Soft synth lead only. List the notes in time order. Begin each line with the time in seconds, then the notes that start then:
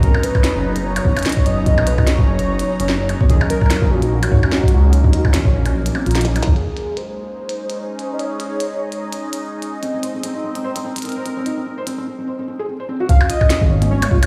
0.03 A#4
0.23 B4
0.85 C#5
1.46 D#5
1.87 B4
2.07 C#5
3.30 G#4
3.50 A#4
3.91 F#4
6.56 G#4
6.97 C5
8.13 D#5
8.20 C#5
13.09 F5
13.30 D#5
13.91 C#5